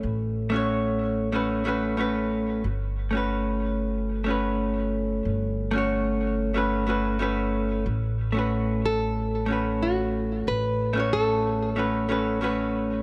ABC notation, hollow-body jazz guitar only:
X:1
M:4/4
L:1/16
Q:1/4=92
K:A
V:1 name="Hollow-body jazz guitar"
[A,CFB]3 [A,CFc]4- [A,CFc] [A,CFB]2 [A,CFB]2 [A,CFB]4 | z3 [A,CFB]6- [A,CFB] [A,CFB]6- | [A,CFB]3 [A,CFc]4- [A,CFc] [A,CFB]2 [A,CFB]2 [A,CFB]4 | z3 [A,CFB]6- [A,CFB] [A,CFB]6- |
[A,CFB]3 [A,CFc]4- [A,CFc] [A,CFB]2 [A,CFB]2 [A,CFB]4 |]